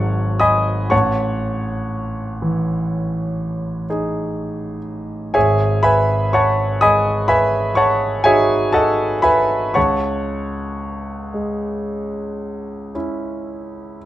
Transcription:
grand piano
Already playing: G#1 F#3 D#4 G#4 C#5 F#5 A5 C#6
0.40 D#5 G#5 B5 D#6
0.90 A1 C#5 F#5 A5 C#6
2.42 E3
3.90 D#4 G#4
5.34 G#1 G#4 C#5 E5 G#5
5.83 B4 E5 G#5 B5
6.33 C#5 F#5 A5 C#6
6.81 G#3 D#5 G#5 B5 D#6
7.28 B4 E5 G#5 B5
7.75 C#5 F#5 A5 C#6
8.24 D#4 F#4 G#4 C#5 E5 G#5
8.73 A4 D#5 F#5 A5
9.22 B4 E5 G#5 B5
9.74 C#2 C#5 F#5 A5 C#6
11.34 G#3
12.95 C#4 E4

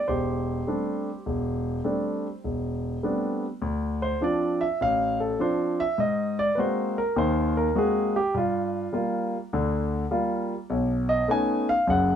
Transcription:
grand piano
0.08 E1 G4 C5
0.67 G3 A3 C4 D4
1.26 E1
1.84 G3 A3 C4 D4
2.44 E1
3.03 G3 A3 B3 C4 D4
3.62 D2
4.02 C5
4.21 F3 C4 D4 D5
4.61 E5
4.81 A1 F5
5.20 A4
5.39 F3 C4 D4 C5
5.80 E5
5.98 G#2 D#5
6.39 D5
6.55 G#3 A#3 C4 F#4 B4
6.59 C5
6.98 A#4
7.16 D#2 D#3 C5
7.57 A#4
7.75 G#3 A#3 C4 F#4 G#4
8.16 G4
8.34 G2 F4
8.93 G3 A#3 F4
9.53 D2 D3
10.11 G3 A#3 F4
10.70 B1
11.09 D#5
11.28 A3 B3 C#4 D#4 G#5
11.69 F5
11.87 F#1 F#2 F#5

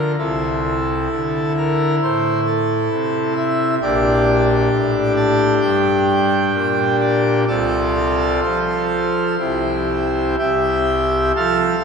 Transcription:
pipe organ
Already playing: D3 F4 A#4
0.18 C2 C3 E4 A4
1.11 D3
1.57 A#4
2.02 A2 C5
2.46 A4
2.92 C3
3.36 E5
3.82 A#1 A#2 D4 G4 D5
4.71 A2
5.16 A5
5.61 G2 G5
6.53 A#2
7.00 D5
7.48 C2 C3 F4 A4 D5
8.43 F3 C5
9.39 C2 C3 E4 G4
10.39 C2 G4 E5 G5
11.36 F3 A4 F5 A5

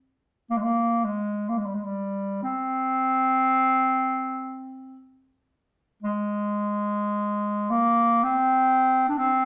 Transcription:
clarinet
0.50 A#3
0.57 G#3
0.63 A#3
1.04 G#3
1.49 A#3
1.58 G#3
1.66 G3
1.75 G#3
1.84 G3
2.43 C4
6.03 G#3
7.70 A#3
8.23 C4
9.08 D4
9.17 C4

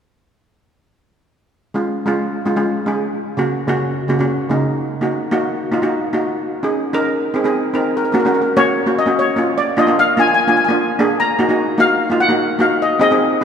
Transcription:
steel pan
1.74 G#3 C#4 F4
2.06 G#3 C#4 F4
2.45 G#3 C#4 F4
2.56 G#3 C#4 F4
2.86 G#3 C#4 G#4
3.37 C#3 A#3 C#4 F#4
3.68 C#3 A#3 C#4 F#4
4.08 C#3 A#3 C#4 F#4
4.19 C#3 A#3 C#4 F#4
4.50 C#3 A#3 C#4 D#4
5.01 A#3 D#4 F#4
5.31 A#3 D#4 F#4
5.72 A#3 D#4 F4
5.82 A#3 D#4 F#4
6.13 A#3 D#4 F#4
6.63 C#4 D#4 G#4
6.93 C#4 D#4 A#4
7.34 C4 D#4 G#4
7.44 C4 D#4 G#4
7.74 C4 D#4 A#4
7.97 A#4
8.05 A#4
8.12 A#3 C#4 F#4 A#4
8.20 A#4
8.25 A#3 C#4 F#4 A#4
8.34 A#4
8.41 A#4
8.57 A#3 C#4 F#4 C#5
8.86 A#3 C#4 F#4
8.99 D#5
9.06 A#3 C#4 F#4
9.19 C#5
9.36 A#3 C#4 F4
9.58 D5
9.77 A#3 D4 F4 D#5
9.87 A#3 D4 F4
9.99 F5
10.17 A#3 D4 F4 G#5
10.28 G#5
10.34 G#5
10.40 G#5
10.48 A#3 D4 F4 G#5
10.57 G#5
10.65 G#5
10.69 A#3 D4 F4
10.99 A#3 D4 G#4
11.20 A#5
11.39 A#3 D#4 F#4
11.49 A#3 D#4 F#4
11.78 A#3 D#4 F#4 F5
12.10 A#3 D#4 F4
12.20 F#5
12.29 A#3 D#4 F#4
12.59 A#3 D#4 F#4 F5
12.82 D#5
12.99 C4 D#4 G#4 D#5
13.11 C4 D#4 G#4

